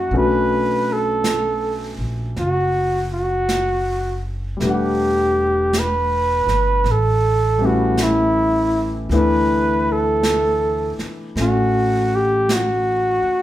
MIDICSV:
0, 0, Header, 1, 6, 480
1, 0, Start_track
1, 0, Key_signature, 2, "major"
1, 0, Tempo, 1125704
1, 46, Time_signature, 4, 2, 24, 8
1, 5724, End_track
2, 0, Start_track
2, 0, Title_t, "Muted trumpet"
2, 0, Program_c, 0, 59
2, 0, Note_on_c, 0, 66, 82
2, 59, Note_off_c, 0, 66, 0
2, 73, Note_on_c, 0, 71, 82
2, 394, Note_on_c, 0, 69, 75
2, 401, Note_off_c, 0, 71, 0
2, 859, Note_off_c, 0, 69, 0
2, 1019, Note_on_c, 0, 66, 86
2, 1313, Note_off_c, 0, 66, 0
2, 1338, Note_on_c, 0, 66, 81
2, 1793, Note_off_c, 0, 66, 0
2, 1981, Note_on_c, 0, 67, 75
2, 2467, Note_on_c, 0, 71, 81
2, 2474, Note_off_c, 0, 67, 0
2, 2947, Note_on_c, 0, 69, 80
2, 2954, Note_off_c, 0, 71, 0
2, 3264, Note_on_c, 0, 66, 74
2, 3271, Note_off_c, 0, 69, 0
2, 3423, Note_on_c, 0, 64, 76
2, 3430, Note_off_c, 0, 66, 0
2, 3816, Note_off_c, 0, 64, 0
2, 3905, Note_on_c, 0, 71, 81
2, 4229, Note_on_c, 0, 69, 75
2, 4236, Note_off_c, 0, 71, 0
2, 4695, Note_off_c, 0, 69, 0
2, 4867, Note_on_c, 0, 66, 85
2, 5182, Note_on_c, 0, 67, 84
2, 5188, Note_off_c, 0, 66, 0
2, 5343, Note_on_c, 0, 66, 85
2, 5349, Note_off_c, 0, 67, 0
2, 5724, Note_off_c, 0, 66, 0
2, 5724, End_track
3, 0, Start_track
3, 0, Title_t, "Grand piano"
3, 0, Program_c, 1, 0
3, 0, Control_c, 1, 64, 127
3, 0, Note_on_c, 1, 54, 51
3, 0, Note_on_c, 1, 55, 48
3, 0, Note_on_c, 1, 58, 43
3, 0, Note_on_c, 1, 61, 44
3, 0, Note_on_c, 1, 64, 43
3, 50, Note_off_c, 1, 55, 0
3, 50, Note_off_c, 1, 58, 0
3, 52, Note_off_c, 1, 61, 0
3, 52, Control_c, 1, 64, 0
3, 53, Note_off_c, 1, 54, 0
3, 53, Note_off_c, 1, 64, 0
3, 54, Note_on_c, 1, 59, 41
3, 56, Note_on_c, 1, 57, 46
3, 58, Note_on_c, 1, 61, 42
3, 58, Note_on_c, 1, 62, 42
3, 60, Note_on_c, 1, 66, 49
3, 115, Control_c, 1, 64, 127
3, 1947, Note_on_c, 1, 55, 41
3, 1954, Note_off_c, 1, 57, 0
3, 1960, Note_on_c, 1, 57, 41
3, 1966, Note_off_c, 1, 59, 0
3, 1971, Note_off_c, 1, 61, 0
3, 1971, Note_off_c, 1, 62, 0
3, 1971, Control_c, 1, 64, 0
3, 1972, Note_off_c, 1, 66, 0
3, 1973, Note_on_c, 1, 59, 41
3, 1982, Note_on_c, 1, 62, 40
3, 1993, Note_on_c, 1, 78, 50
3, 2055, Control_c, 1, 64, 127
3, 2915, Note_off_c, 1, 55, 0
3, 2922, Note_off_c, 1, 57, 0
3, 2928, Note_off_c, 1, 59, 0
3, 2930, Control_c, 1, 64, 0
3, 2933, Note_off_c, 1, 62, 0
3, 2938, Note_off_c, 1, 78, 0
3, 3018, Control_c, 1, 64, 127
3, 3234, Note_on_c, 1, 55, 44
3, 3237, Note_on_c, 1, 57, 41
3, 3242, Note_on_c, 1, 59, 40
3, 3247, Note_on_c, 1, 61, 37
3, 3254, Note_on_c, 1, 64, 47
3, 3880, Note_off_c, 1, 55, 0
3, 3881, Note_off_c, 1, 57, 0
3, 3883, Note_off_c, 1, 59, 0
3, 3887, Note_off_c, 1, 61, 0
3, 3889, Note_off_c, 1, 64, 0
3, 3889, Control_c, 1, 64, 0
3, 3889, Note_on_c, 1, 52, 53
3, 3889, Note_on_c, 1, 57, 47
3, 3890, Note_on_c, 1, 59, 48
3, 3893, Note_on_c, 1, 62, 47
3, 3896, Note_on_c, 1, 64, 62
3, 3953, Control_c, 1, 64, 127
3, 4841, Note_off_c, 1, 57, 0
3, 4848, Note_on_c, 1, 57, 37
3, 4861, Note_on_c, 1, 61, 42
3, 5724, Note_off_c, 1, 52, 0
3, 5724, Note_off_c, 1, 57, 0
3, 5724, Note_off_c, 1, 59, 0
3, 5724, Note_off_c, 1, 61, 0
3, 5724, Note_off_c, 1, 62, 0
3, 5724, Note_off_c, 1, 64, 0
3, 5724, End_track
4, 0, Start_track
4, 0, Title_t, "Upright bass"
4, 0, Program_c, 2, 32
4, 47, Note_on_c, 2, 35, 70
4, 827, Note_off_c, 2, 35, 0
4, 847, Note_on_c, 2, 34, 55
4, 996, Note_off_c, 2, 34, 0
4, 1010, Note_on_c, 2, 30, 69
4, 1950, Note_off_c, 2, 30, 0
4, 1962, Note_on_c, 2, 28, 75
4, 2743, Note_off_c, 2, 28, 0
4, 2758, Note_on_c, 2, 31, 61
4, 2910, Note_off_c, 2, 31, 0
4, 2917, Note_on_c, 2, 33, 77
4, 3863, Note_off_c, 2, 33, 0
4, 3878, Note_on_c, 2, 38, 70
4, 4661, Note_off_c, 2, 38, 0
4, 4842, Note_on_c, 2, 33, 72
4, 5624, Note_off_c, 2, 33, 0
4, 5724, End_track
5, 0, Start_track
5, 0, Title_t, "Muted upright bass strokes"
5, 4683, Note_on_c, 9, 29, 33
5, 4725, Note_off_c, 9, 29, 0
5, 5642, Note_on_c, 9, 29, 31
5, 5684, Note_off_c, 9, 29, 0
5, 5724, End_track
6, 0, Start_track
6, 0, Title_t, "Drums"
6, 48, Note_on_c, 9, 25, 32
6, 529, Note_off_c, 9, 25, 0
6, 529, Note_on_c, 9, 25, 36
6, 529, Note_on_c, 9, 38, 39
6, 529, Note_on_c, 9, 44, 52
6, 572, Note_off_c, 9, 38, 0
6, 572, Note_off_c, 9, 44, 0
6, 1008, Note_off_c, 9, 25, 0
6, 1008, Note_on_c, 9, 25, 36
6, 1008, Note_on_c, 9, 38, 23
6, 1051, Note_off_c, 9, 38, 0
6, 1487, Note_off_c, 9, 25, 0
6, 1487, Note_on_c, 9, 25, 35
6, 1487, Note_on_c, 9, 38, 41
6, 1487, Note_on_c, 9, 44, 49
6, 1529, Note_off_c, 9, 38, 0
6, 1529, Note_off_c, 9, 44, 0
6, 1963, Note_off_c, 9, 25, 0
6, 1963, Note_on_c, 9, 25, 32
6, 1963, Note_on_c, 9, 38, 23
6, 2006, Note_off_c, 9, 38, 0
6, 2445, Note_off_c, 9, 25, 0
6, 2445, Note_on_c, 9, 25, 29
6, 2445, Note_on_c, 9, 38, 37
6, 2445, Note_on_c, 9, 44, 48
6, 2487, Note_off_c, 9, 38, 0
6, 2487, Note_off_c, 9, 44, 0
6, 2765, Note_on_c, 9, 38, 26
6, 2807, Note_off_c, 9, 38, 0
6, 2923, Note_off_c, 9, 25, 0
6, 2923, Note_on_c, 9, 25, 32
6, 2923, Note_on_c, 9, 38, 24
6, 2965, Note_off_c, 9, 38, 0
6, 3400, Note_off_c, 9, 25, 0
6, 3400, Note_on_c, 9, 25, 30
6, 3400, Note_on_c, 9, 38, 39
6, 3400, Note_on_c, 9, 44, 56
6, 3443, Note_off_c, 9, 38, 0
6, 3443, Note_off_c, 9, 44, 0
6, 3883, Note_off_c, 9, 25, 0
6, 3883, Note_on_c, 9, 25, 29
6, 3883, Note_on_c, 9, 38, 24
6, 3926, Note_off_c, 9, 38, 0
6, 4363, Note_off_c, 9, 25, 0
6, 4363, Note_on_c, 9, 25, 31
6, 4363, Note_on_c, 9, 38, 39
6, 4363, Note_on_c, 9, 44, 51
6, 4406, Note_off_c, 9, 38, 0
6, 4406, Note_off_c, 9, 44, 0
6, 4687, Note_on_c, 9, 38, 24
6, 4729, Note_off_c, 9, 38, 0
6, 4846, Note_off_c, 9, 25, 0
6, 4846, Note_on_c, 9, 25, 29
6, 4846, Note_on_c, 9, 38, 27
6, 4889, Note_off_c, 9, 38, 0
6, 5326, Note_off_c, 9, 25, 0
6, 5326, Note_on_c, 9, 25, 30
6, 5326, Note_on_c, 9, 38, 39
6, 5326, Note_on_c, 9, 44, 49
6, 5369, Note_off_c, 9, 38, 0
6, 5369, Note_off_c, 9, 44, 0
6, 5724, Note_off_c, 9, 25, 0
6, 5724, End_track
0, 0, End_of_file